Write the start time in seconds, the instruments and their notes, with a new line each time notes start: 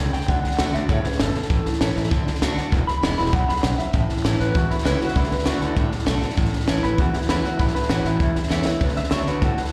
Already playing: steel-string acoustic guitar C#3
0.13 clean electric guitar G5, muted fingered electric bass stroke, snare
0.21 snare
0.28 fingered electric bass D2, steel-string acoustic guitar D3, clean electric guitar F#5, kick, snare
0.44 muted fingered electric bass stroke, snare
0.51 snare
0.58 fingered electric bass D2, steel-string acoustic guitar D3 A3 D4 F#4, snare, hi-hat pedal
0.73 fingered electric bass D2, steel-string acoustic guitar D4 F#4, clean electric guitar E5, snare
0.89 fingered electric bass A2, steel-string acoustic guitar C#3, clean electric guitar C#5, kick, snare
1.04 clean electric guitar B4, muted fingered electric bass stroke, snare
1.12 snare
1.20 fingered electric bass G1, steel-string acoustic guitar B2, clean electric guitar A4, snare, hi-hat pedal
1.35 muted fingered electric bass stroke, snare
1.42 snare
1.50 fingered electric bass A1, steel-string acoustic guitar A2, kick, snare
1.65 muted fingered electric bass stroke, snare
1.73 snare
1.81 fingered electric bass A1, steel-string acoustic guitar E3 A3 C#4 E4, snare, hi-hat pedal
1.96 fingered electric bass A1, steel-string acoustic guitar C#4 E4, snare
2.04 snare
2.11 fingered electric bass D2, steel-string acoustic guitar D3, kick, snare
2.27 muted fingered electric bass stroke, snare
2.35 snare
2.42 fingered electric bass D2, steel-string acoustic guitar D3 A3 D4 F#4, snare, hi-hat pedal
2.57 steel-string acoustic guitar D4 F#4, muted fingered electric bass stroke, snare
2.72 fingered electric bass E1, steel-string acoustic guitar E2, kick, snare
2.87 clean electric guitar B5, muted fingered electric bass stroke, snare
3.03 fingered electric bass E1, steel-string acoustic guitar E3 G#3 B3 E4, snare, hi-hat pedal
3.18 fingered electric bass E1, steel-string acoustic guitar B3 E4, clean electric guitar B5, snare
3.26 snare
3.33 fingered electric bass B1, steel-string acoustic guitar F#2, clean electric guitar F#5, kick, snare
3.48 clean electric guitar B5, muted fingered electric bass stroke, snare
3.56 snare
3.63 fingered electric bass B1, steel-string acoustic guitar G#2, clean electric guitar F#5, snare, hi-hat pedal
3.78 clean electric guitar E5, muted fingered electric bass stroke, snare
3.93 fingered electric bass A1, steel-string acoustic guitar A2, kick, snare
4.09 muted fingered electric bass stroke, snare
4.17 snare
4.24 fingered electric bass A1, steel-string acoustic guitar E3 A3 C#4 E4, snare, hi-hat pedal
4.39 fingered electric bass A1, steel-string acoustic guitar C#4 E4, clean electric guitar B4, snare
4.55 steel-string acoustic guitar E2, fingered electric bass E2, clean electric guitar F#4, kick, snare
4.70 clean electric guitar E4, muted fingered electric bass stroke, snare
4.78 snare
4.84 fingered electric bass C#2, steel-string acoustic guitar E3 A3 C#4 E4, clean electric guitar B4, snare, hi-hat pedal
4.99 steel-string acoustic guitar C#4 E4, clean electric guitar F#4, muted fingered electric bass stroke, snare
5.08 snare
5.15 fingered electric bass D2, steel-string acoustic guitar D3, clean electric guitar E4, kick, snare
5.24 snare
5.31 clean electric guitar B4, muted fingered electric bass stroke, snare
5.39 snare
5.45 fingered electric bass D2, steel-string acoustic guitar D3 A3 D4 F#4, clean electric guitar F#4, snare, hi-hat pedal
5.61 fingered electric bass D2, clean electric guitar E4, snare
5.76 fingered electric bass A2, steel-string acoustic guitar A2, clean electric guitar D4, kick, snare
5.92 muted fingered electric bass stroke, snare
5.99 snare
6.06 fingered electric bass B1, steel-string acoustic guitar D3 A3 D4 F#4, snare, hi-hat pedal
6.21 steel-string acoustic guitar D4 F#4, muted fingered electric bass stroke, snare
6.30 snare
6.37 fingered electric bass A1, steel-string acoustic guitar A2, kick, snare
6.45 snare
6.53 muted fingered electric bass stroke, snare
6.60 snare
6.67 fingered electric bass A1, steel-string acoustic guitar E3 A3 C#4 E4, snare, hi-hat pedal
6.83 fingered electric bass A1, clean electric guitar B4, snare
6.98 steel-string acoustic guitar E2, fingered electric bass E2, clean electric guitar F#4, kick, snare
7.14 clean electric guitar E4, muted fingered electric bass stroke, snare
7.22 snare
7.29 fingered electric bass E2, steel-string acoustic guitar E3 A3 C#4 E4, clean electric guitar B4, snare, hi-hat pedal
7.43 steel-string acoustic guitar C#4 E4, clean electric guitar F#4, muted fingered electric bass stroke, snare
7.59 fingered electric bass A1, steel-string acoustic guitar A2, clean electric guitar E4, kick, snare
7.68 snare
7.74 clean electric guitar B4, muted fingered electric bass stroke, snare
7.83 snare
7.89 fingered electric bass A1, steel-string acoustic guitar E3 A3 C#4 E4, clean electric guitar F#4, snare, hi-hat pedal
8.05 fingered electric bass A1, steel-string acoustic guitar C#4 E4, clean electric guitar E4, snare
8.20 steel-string acoustic guitar E2, fingered electric bass E2, clean electric guitar E4, kick, snare
8.36 muted fingered electric bass stroke, snare
8.43 snare
8.49 fingered electric bass E2, steel-string acoustic guitar E3 A3 C#4 E4, clean electric guitar E5, snare, hi-hat pedal
8.65 steel-string acoustic guitar C#4 E4, clean electric guitar C#5, muted fingered electric bass stroke, snare
8.80 fingered electric bass D2, steel-string acoustic guitar D3, clean electric guitar B4, kick, snare
8.88 snare
8.96 clean electric guitar E5, muted fingered electric bass stroke, snare
9.04 snare
9.11 fingered electric bass D2, steel-string acoustic guitar D3 A3 D4 F#4, clean electric guitar C#5, snare, hi-hat pedal
9.27 fingered electric bass D2, steel-string acoustic guitar D4 F#4, clean electric guitar B4, snare
9.41 fingered electric bass A2, steel-string acoustic guitar A2, clean electric guitar F#4, kick, snare
9.57 muted fingered electric bass stroke, snare
9.65 snare